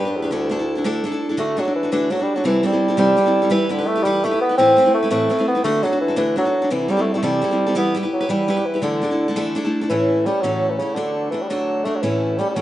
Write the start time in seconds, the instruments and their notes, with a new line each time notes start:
Already playing: bassoon G2
0.05 steel-string acoustic guitar D4 G4 B4
0.16 bassoon E2
0.22 steel-string acoustic guitar D4 G4 B4
0.31 bassoon D2, steel-string acoustic guitar D3 A3 D4 E4 A4
0.49 steel-string acoustic guitar A3 D4 E4 A4
0.59 steel-string acoustic guitar D4 E4 A4
0.75 steel-string acoustic guitar D4 E4 A4
0.84 steel-string acoustic guitar D3 A3 D4 E4 A4
1.04 steel-string acoustic guitar A3 D4 E4 A4
1.12 steel-string acoustic guitar D4 E4 A4
1.29 steel-string acoustic guitar D4 E4 A4
1.37 steel-string acoustic guitar D3 A3 D4 F#4 A4, bassoon A3
1.57 bassoon F#3, steel-string acoustic guitar A3 D4 F#4 A4
1.65 steel-string acoustic guitar D4 F#4 A4
1.76 bassoon E3
1.83 steel-string acoustic guitar D4 F#4 A4
1.92 steel-string acoustic guitar D3 A3 D4 F#4 A4, bassoon E3
2.10 bassoon F#3, steel-string acoustic guitar A3 D4 F#4 A4
2.19 bassoon G3, steel-string acoustic guitar D4 F#4 A4
2.35 bassoon F#3, steel-string acoustic guitar D4 F#4 A4
2.44 steel-string acoustic guitar C3 E3 G3 C4 E4 A4, bassoon E3
2.63 steel-string acoustic guitar G3 C4 E4 A4, bassoon G3
2.72 steel-string acoustic guitar G3 C4 E4 A4
2.88 steel-string acoustic guitar G3 C4 E4 A4
2.97 steel-string acoustic guitar C3 E3 G3 C4 E4 A4, bassoon G3
3.17 steel-string acoustic guitar G3 C4 E4 A4
3.26 steel-string acoustic guitar G3 C4 E4 A4
3.42 steel-string acoustic guitar G3 C4 E4 A4
3.50 steel-string acoustic guitar E3 G3 E4 G4 B4, bassoon E3
3.66 bassoon E3, steel-string acoustic guitar G3
3.70 bassoon D3, steel-string acoustic guitar E4 G4 B4
3.78 steel-string acoustic guitar E4 G4 B4
3.88 bassoon A3
3.95 steel-string acoustic guitar E4 G4 B4
4.04 steel-string acoustic guitar E3 G3 E4 G4 B4, bassoon G3
4.24 steel-string acoustic guitar G3 E4 G4 B4, bassoon A3
4.31 steel-string acoustic guitar E4 G4 B4
4.41 bassoon B3
4.49 steel-string acoustic guitar E4 G4 B4
4.57 steel-string acoustic guitar A2 E3 A3 C4 E4 B4, bassoon C4
4.77 steel-string acoustic guitar A3 C4 E4 B4
4.85 steel-string acoustic guitar A3 C4 E4 B4
4.94 bassoon A3
5.02 steel-string acoustic guitar A3 C4 E4 B4
5.10 steel-string acoustic guitar A2 E3 A3 C4 E4 B4, bassoon A3
5.29 steel-string acoustic guitar A3 C4 E4 B4
5.38 steel-string acoustic guitar A3 C4 E4 B4
5.48 bassoon B3
5.55 steel-string acoustic guitar A3 C4 E4 B4
5.64 steel-string acoustic guitar D3 A3 D4 F#4 A4, bassoon A3
5.83 bassoon F#3, steel-string acoustic guitar A3 D4 F#4 A4
5.91 steel-string acoustic guitar D4 F#4 A4
6.01 bassoon E3
6.08 steel-string acoustic guitar D4 F#4 A4
6.16 steel-string acoustic guitar D3 A3 D4 F#4 A4, bassoon E3
6.36 bassoon F#3, steel-string acoustic guitar A3 D4 F#4 A4
6.45 steel-string acoustic guitar D4 F#4 A4
6.62 steel-string acoustic guitar D4 F#4 A4
6.70 steel-string acoustic guitar C3 E3 G3 C4 E4 A4, bassoon E3
6.88 steel-string acoustic guitar G3 C4 E4 A4, bassoon G3
6.97 steel-string acoustic guitar G3 C4 E4 A4
7.02 bassoon A3
7.13 bassoon G3, steel-string acoustic guitar G3 C4 E4 A4
7.18 bassoon A3
7.23 steel-string acoustic guitar C3 E3 G3 C4 E4 A4, bassoon G3
7.42 steel-string acoustic guitar G3 C4 E4 A4
7.51 steel-string acoustic guitar G3 C4 E4 A4
7.67 steel-string acoustic guitar G3 C4 E4 A4
7.75 steel-string acoustic guitar E3 G3 E4 G4 B4, bassoon B3
7.95 steel-string acoustic guitar G3 E4 G4 B4
8.03 steel-string acoustic guitar E4 G4 B4
8.13 bassoon F#3
8.21 steel-string acoustic guitar E4 G4 B4
8.29 steel-string acoustic guitar E3 G3 E4 G4 B4, bassoon G3
8.48 steel-string acoustic guitar G3 E4 G4 B4
8.57 steel-string acoustic guitar E4 G4 B4
8.65 bassoon E3
8.74 steel-string acoustic guitar E4 G4 B4
8.82 steel-string acoustic guitar D3 E3 A3 D4 E4 A4, bassoon D3
9.02 steel-string acoustic guitar A3 D4 E4 A4
9.11 steel-string acoustic guitar A3 D4 E4 A4
9.28 steel-string acoustic guitar A3 D4 E4 A4
9.36 steel-string acoustic guitar D3 E3 A3 D4 E4 A4
9.55 steel-string acoustic guitar A3 D4 E4 A4
9.65 steel-string acoustic guitar A3 D4 E4 A4
9.81 steel-string acoustic guitar A3 D4 E4 A4
9.89 steel-string acoustic guitar A2 E3 A3 C#4 E4 A4, bassoon E3
10.26 bassoon G3, steel-string acoustic guitar A3 C#4 E4 A4
10.41 steel-string acoustic guitar A2 E3 A3 C#4 E4 A4, bassoon F#3
10.70 bassoon E3
10.78 bassoon C#3, steel-string acoustic guitar A3 C#4 E4 A4
10.94 bassoon D3, steel-string acoustic guitar D3 A3 D4 F#4 A4
11.31 bassoon E3, steel-string acoustic guitar A3 D4 F#4 A4
11.42 bassoon G3
11.48 steel-string acoustic guitar D3 A3 D4 F#4 A4, bassoon F#3
11.85 bassoon A3, steel-string acoustic guitar A3 D4 F#4 A4
11.96 bassoon F#3
12.02 steel-string acoustic guitar A2 E3 A3 C#4 E4 A4, bassoon E3
12.38 bassoon G3, steel-string acoustic guitar A3 C#4 E4 A4
12.50 bassoon G3
12.54 steel-string acoustic guitar A2 E3 A3 C#4 E4 A4, bassoon F#3